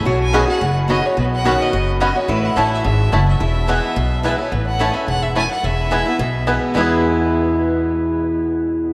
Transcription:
<<
  \new Staff \with { instrumentName = "Fiddle" } { \time 4/4 \key e \major \tempo 4 = 215 cis''8 gis''4 fis''4 r8 dis''8 cis''8 | b'8 fis''4 dis''4 r8 dis''8 cis''8 | b'8 fis''4 e''8 e''4 fis''8 e''8~ | e''2. e''8 cis''8 |
b'8 fis''8.~ fis''32 dis''32 e''8 fis''8 e''8 gis''8 fis''8 | e''2. r4 | r1 | r1 | }
  \new Staff \with { instrumentName = "Mandolin" } { \time 4/4 \key e \major r4 <cis' fis' dis'' b''>8 r4. <cis' fis' dis'' b''>8 r8 | r4 <cis' fis' dis'' b''>8 r4. <cis' fis' dis'' b''>8 r8 | r4 <a e' cis'' a''>8 r4. <a e' cis'' a''>8 r8 | r4 <b e' b' gis''>8 r4. <b e' b' gis''>8 r8 |
r4 <a e' cis'' a''>8 r4. <a e' cis'' a''>8 r8 | r4 <b e' b' gis''>8 r4. <b e' b' gis''>8 r8 | <b e' b' gis''>1~ | <b e' b' gis''>1 | }
  \new Staff \with { instrumentName = "Resonator guitar played with a steel bar" } { \time 4/4 \key e \major fis'4 gis'2.~ | gis'4 fis'2. | e'1 | e'2.~ e'8 r8 |
r1 | r1 | r1 | r1 | }
  \new Staff \with { instrumentName = "Five-string banjo" } { \time 4/4 \key e \major r4 <b cis' fis'>8 r4. <b cis' fis'>8 r8 | r4 <b cis' fis'>8 r4. <b cis' fis'>8 r8 | r4 <a cis' e'>8 r4. <a cis' e'>8 r8 | r4 <b e'>8 r4. <b e'>8 r8 |
r4 <a cis' e'>8 r4. <a cis' e'>8 r8 | r4 <b e'>8 r4. <b e'>8 r8 | <gis b e' gis'>1~ | <gis b e' gis'>1 | }
  \new Staff \with { instrumentName = "Steel-string acoustic guitar" } { \clef bass \time 4/4 \key e \major << { r4 <b, dis cis' fis'>8 <cis' fis'>8 r4 <b, dis cis' fis'>8 <cis' fis'>8 | r4 <b, dis cis' fis'>4 r4 <b, dis cis' fis'>8 <cis' fis'>8 | r4 <e a cis' e'>4 r2 | r4 <e gis b e'>4 r4 <e gis b e'>8 <b e'>8 |
r4 <e a cis' e'>8 <cis' e'>8 r2 | r4 <e gis b e'>8 <b e'>8 r4 <e gis b e'>4 | <e, b, e gis b e'>1~ | <e, b, e gis b e'>1 | } \\ { b,2 fis,2 | b,2 fis,2 | a,2 gis,4 fis,4 | e,2 b,2 |
a,2 gis,4 fis,4 | e,2 b,2 | r1 | r1 | } >> }
  \new Staff \with { instrumentName = "Upright bass" } { \clef bass \time 4/4 \key e \major b,,2 fis,,2 | b,,2 fis,,2 | a,,4 a,,4 gis,,4 fis,,4 | e,,2 b,,2 |
a,,2 e,,2 | e,,2 b,,2 | e,1~ | e,1 | }
>>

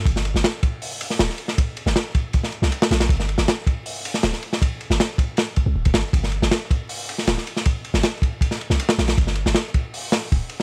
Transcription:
<<
  \new Staff \with { instrumentName = "808-style bass" } { \clef bass \time 4/4 \key g \minor \tempo 4 = 158 g,,8. g,,16 r2 d,,16 r8. | r8. g,,16 r4. r16 c,16 r8 bes,,8 | g,,8. g,,16 r2 d,,16 r8. | r8. g,,16 r4. r16 c,16 d,,16 d,,16 g,,16 r16 |
g,,8. g,,16 r2 d,,16 r8. | r8. g,,16 r4. r16 c,16 r8 bes,,8 | g,,8. g,,16 r2 d,,16 r8. | }
  \new DrumStaff \with { instrumentName = "Drums" } \drummode { \time 4/4 <bd cymr>16 sn16 cymr16 sn16 <cymr sn>8 <bd cymr>8 hho8 cymr16 sn16 <cymr sn>16 sn16 cymr16 sn16 | <bd cymr>8 cymr16 sn16 <cymr sn>8 <bd cymr>8 <bd cymr>16 sn16 cymr16 sn16 cymr16 sn16 <cymr sn>16 <cymr sn>16 | <bd cymr>16 sn16 cymr16 sn16 <cymr sn>8 <bd cymr>8 hho8 cymr16 sn16 <cymr sn>16 sn16 cymr16 sn16 | <bd cymr>8 cymr16 sn16 <cymr sn>8 <bd cymr>8 <cymr sn>8 <bd cymr>8 r16 <bd cymr>16 <cymr sn>8 |
<bd cymr>16 sn16 cymr16 sn16 <cymr sn>8 <bd cymr>8 hho8 cymr16 sn16 <cymr sn>16 sn16 cymr16 sn16 | <bd cymr>8 cymr16 sn16 <cymr sn>8 <bd cymr>8 <bd cymr>16 sn16 cymr16 sn16 cymr16 sn16 <cymr sn>16 <cymr sn>16 | <bd cymr>16 sn16 cymr16 sn16 <cymr sn>8 <bd cymr>8 hho8 <cymr sn>8 <bd cymr>8 cymr8 | }
>>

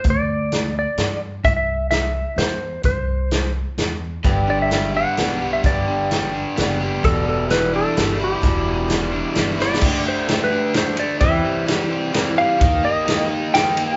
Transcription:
<<
  \new Staff \with { instrumentName = "Electric slide guitar" } { \time 3/4 \key g \major \tempo 4 = 129 d''4. d''4 r8 | e''16 e''8. e''4 c''4 | c''4. r4. | r8 d''16 e''8. fis''4~ fis''16 e''16 |
d''2~ d''8 r8 | a'8 a'8 b'8 a'4 g'8~ | g'2 r8 d''8~ | d''8 c''8. b'8. c''8 d''8 |
e''4 r4. f''8~ | f''8 ees''4 r8 g''4 | }
  \new Staff \with { instrumentName = "Steel-string acoustic guitar" } { \time 3/4 \key g \major r2. | r2. | r2. | <g, d g b d' g'>4 <g b d' g'>8 <g b d' g'>8 <g b d' g'>4 |
<g, d g b d' g'>4 <g b d' g'>4 <g b d' g'>4 | <e, b, e g d' e'>4 <e g d' e'>4 <e g d' e'>8 <e g d' e'>8 | <e, b, e g d' e'>4 <e g d' e'>4 <e g d' e'>8 <e g d' e'>8 | <d a d' g'>4 <d a d' g'>8 <a d' g'>8 <d a d' g'>4 |
<e g c' g'>4 <e g c' g'>4 <e g c' g'>8 <g c' g'>8 | <ees bes ees' g'>4 <ees bes ees' g'>4 <ees bes ees' g'>4 | }
  \new Staff \with { instrumentName = "Overdriven electric guitar" } { \clef bass \time 3/4 \key g \major r2. | r2. | r2. | g,8 d8 g8 d'8 b8 g'8 |
g,8 d8 g8 d'8 b8 g'8 | e,8 b,8 e8 d'8 g8 e'8 | e,8 b,8 e8 d'8 g8 e'8 | d8 a8 a8 d'8 d8 a8 |
e8 g8 g8 c'8 e8 g8 | ees8 bes8 bes8 ees'8 ees8 bes8 | }
  \new Staff \with { instrumentName = "Upright bass" } { \clef bass \time 3/4 \key g \major d,2 g,4 | c,2 e,4 | c,2 e,4 | g,,2 b,,4 |
g,,2 fis,,4 | e,,2 g,,4 | e,,2 g,,4 | d,8 r2 r8 |
e,8 r2 r8 | ees,8 r2 r8 | }
  \new DrumStaff \with { instrumentName = "Drums" } \drummode { \time 3/4 <hh bd>4 <hh sn>4 <hh sn>4 | <hh bd>4 <hh sn>4 <hh sn>4 | <hh bd>4 <hh sn>4 <hh sn>4 | <hh bd>4 <hh sn>4 <hh sn>4 |
<hh bd>4 <hh sn>4 <hh sn>4 | <hh bd>4 <hh sn>4 <hh sn>4 | <hh bd>4 <hh sn>4 \tuplet 3/2 { <hh sn>16 r16 r16 sn16 r16 sn16 } | <cymc bd>4 <cymr sn>4 <cymr sn>8 cymr8 |
<bd cymr>4 <cymr sn>4 <cymr sn>4 | <bd cymr>4 <cymr sn>4 <cymr sn>8 cymr8 | }
>>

